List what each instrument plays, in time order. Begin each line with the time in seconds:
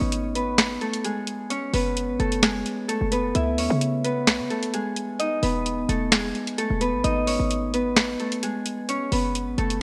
Already playing: harp A3 B3 C#4 D#4 A4 B4 C#5 D#5
0.01 808-style bass G#1
0.12 closed hi-hat
0.35 harp B3 B4, closed hi-hat
0.58 snare, closed hi-hat
0.81 harp A3 A4, closed hi-hat
0.94 closed hi-hat
1.04 harp G#3 G#4, closed hi-hat
1.27 closed hi-hat
1.50 harp C#4 C#5, closed hi-hat
1.74 808-style bass F#1, harp B3 B4, open hi-hat
1.97 closed hi-hat
2.09 808-style bass G#1
2.20 808-style bass F#1, harp A3 A4, closed hi-hat
2.32 closed hi-hat
2.43 harp G#3 G#4, snare, closed hi-hat
2.66 closed hi-hat
2.88 harp A3 A4, closed hi-hat
3.01 808-style bass F#1
3.12 harp B3 B4, closed hi-hat
3.35 808-style bass C#2, harp E4 E5, closed hi-hat
3.58 808-style bass D#2, harp C#4 C#5, open hi-hat
3.70 808-style bass C#3
3.81 closed hi-hat
4.04 harp B3 B4, closed hi-hat
4.27 808-style bass B1, snare, closed hi-hat
4.40 808-style bass C#3
4.50 harp A3 A4, closed hi-hat
4.63 closed hi-hat
4.74 harp G#3 G#4, closed hi-hat
4.96 closed hi-hat
5.19 harp D#4 D#5, closed hi-hat
5.43 808-style bass E1, harp B3 B4, open hi-hat
5.66 closed hi-hat
5.89 808-style bass E1, harp A3 A4, closed hi-hat
6.12 harp G#3 G#4, snare, closed hi-hat
6.35 closed hi-hat
6.47 closed hi-hat
6.58 harp A3 A4, closed hi-hat
6.70 808-style bass E1
6.81 harp B3 B4, closed hi-hat
6.93 808-style bass G#1
7.04 808-style bass G#1, harp D#4 D#5, closed hi-hat
7.27 harp C#4 C#5, open hi-hat
7.40 808-style bass G#1
7.51 closed hi-hat
7.74 harp B3 B4, closed hi-hat
7.96 snare, closed hi-hat
8.20 harp A3 A4, closed hi-hat
8.32 closed hi-hat
8.43 harp G#3 G#4, closed hi-hat
8.66 closed hi-hat
8.89 harp C#4 C#5, closed hi-hat
9.12 808-style bass F#1, harp B3 B4, open hi-hat
9.35 closed hi-hat
9.47 808-style bass G#1
9.58 808-style bass F#1, harp A3 A4, closed hi-hat
9.70 closed hi-hat